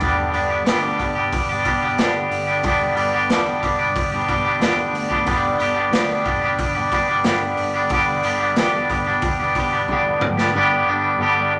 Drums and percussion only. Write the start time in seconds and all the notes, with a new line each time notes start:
0.01 kick, open hi-hat
0.34 open hi-hat
0.66 snare, open hi-hat
1.00 kick, open hi-hat
1.32 kick, open hi-hat
1.65 kick, open hi-hat
1.98 snare, open hi-hat
2.31 open hi-hat
2.63 kick, open hi-hat
2.97 open hi-hat
3.30 snare, open hi-hat
3.63 kick, open hi-hat
3.96 kick, open hi-hat
4.28 kick, open hi-hat
4.61 snare, open hi-hat
4.95 open hi-hat
5.11 kick
5.26 kick, open hi-hat
5.60 open hi-hat
5.93 snare, open hi-hat
6.25 kick, open hi-hat
6.59 kick, open hi-hat
6.92 kick, open hi-hat
7.24 snare, open hi-hat
7.57 open hi-hat
7.89 kick, open hi-hat
8.23 open hi-hat
8.56 snare, open hi-hat
8.90 kick, open hi-hat
9.22 kick, open hi-hat
9.55 kick, open hi-hat
9.88 kick
10.21 mid tom
10.38 snare